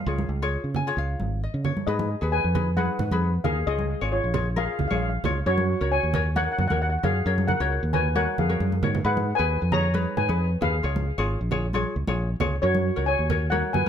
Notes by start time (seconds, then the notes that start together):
Already playing: F5
0.06 C#2 F4 G#4 C#5
0.18 high conga
0.29 C#2
0.42 F4 G#4 C#5
0.64 C#3
0.74 G#5, low conga
0.87 F4 G#4 C#5
0.97 C#2 F5
1.20 G#1, high conga
1.44 D#5
1.54 C#3
1.65 C#5, low conga
1.77 high conga
1.87 G#2 D#4 G#4 B4 D#5
1.99 high conga
2.21 D#2 D#4 G#4 B4
2.32 B4 G#5
2.44 F2
2.55 D#4 G#4 B4, low conga
2.77 D#4 G#4 B4 F#5, high conga
2.99 G#2, low conga
3.11 F2 D#4 G#4 B4, high conga
3.44 D#2 D#4 G#4 A#4 F5, low conga
3.67 C#2 F4 G#4 C#5 D#5
3.79 high conga
4.01 G#1 F4 G#4 C#5
4.12 F4 C#5
4.24 A#1
4.34 F4 G#4 C#5, low conga
4.56 F4 G#4 A#4 F5, high conga
4.65 F5
4.73 F5
4.79 C#2 F5, low conga
4.88 A#1 G#4 C#5 F5, high conga
4.92 F4 F5
5.02 F5
5.09 F5
5.24 C#2 F4 G#4 C#5, low conga
5.46 F#2 F#4 A#4 C#5
5.58 high conga
5.81 C#2 F#4 A#4 C#5
5.92 C#5 G#5
6.03 D#2
6.14 F#4 A#4 C#5, low conga
6.36 F#4 A#4 C#5 F#5, high conga
6.52 F#5
6.58 F#2 F#5, low conga
6.68 D#2 F#4 A#4 F#5, high conga
6.72 C#5 F#5
6.82 F#5
6.90 F#5
7.03 F#2 F#4 G#4 A#4 C#5 F5, low conga
7.26 F#2 F#4 A#4 C#5
7.38 high conga
7.48 A#4 F#5, high conga, low conga
7.60 C#2 F#4 A#4 C#5
7.83 D#2
7.93 F#4 A#4 B4 C#5 G#5, low conga
8.15 F#4 A#4 C#5 F#5, high conga
8.38 F2 G#4 F5, low conga
8.49 F#4 A#4 C#5, high conga
8.60 F#2, high conga
8.72 high conga
8.82 G#2 F#4 A#4 C#5, low conga
8.95 low conga
9.05 G#2 D#4 G#4 B4 F#5
9.17 high conga
9.35 D#4 G#4 B4 G#5
9.39 D#2 B4
9.62 F2
9.72 D#4 G#4 B4 C#5 A#5, low conga
9.94 D#4 G#4 B4, high conga
10.17 G#2 B4 G#5, low conga
10.29 F2 D#4 G#4 B4, high conga
10.61 D#2 D#4 G#4 B4 F5, low conga
10.83 C#2 F4 G#4 C#5
10.96 high conga
11.18 G#1 F4 G#4 C#5
11.41 A#1
11.51 F4 G#4 C#5, low conga
11.73 F4 G#4 C#5, high conga
11.96 C#2
12.07 A#1 F4 G#4 C#5, high conga
12.40 C#2 F4 G#4 C#5, low conga
12.62 F#2 F#4 A#4 C#5
12.75 high conga
12.96 C#2 F#4 A#4 C#5
13.06 C#5 G#5
13.19 D#2
13.30 F#4 A#4 C#5, low conga
13.50 F#4 A#4 C#5 F#5, high conga
13.73 F#2 B4 G#5, low conga